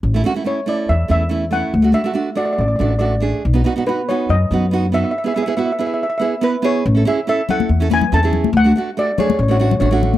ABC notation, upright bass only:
X:1
M:4/4
L:1/8
Q:1/4=141
K:A
V:1 name="Upright bass" clef=bass
A,,, z3 E,, E,,3 | D,, z3 A,,, A,,,3 | B,,, z3 F,, F,,3 | z8 |
A,,, z3 E,,2 E,,2 | D,, z3 A,,,2 A,,,2 |]